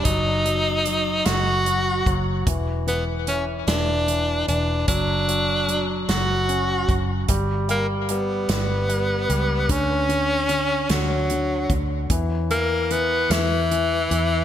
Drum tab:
HH |xxxxxx|xxxxxx|xxxxxx|xxxxxx|
SD |---o--|---o--|---o--|---o--|
BD |o----o|o-----|o----o|o-----|

HH |xxxxxx|xxxxxx|
SD |---o--|---o--|
BD |o----o|o-----|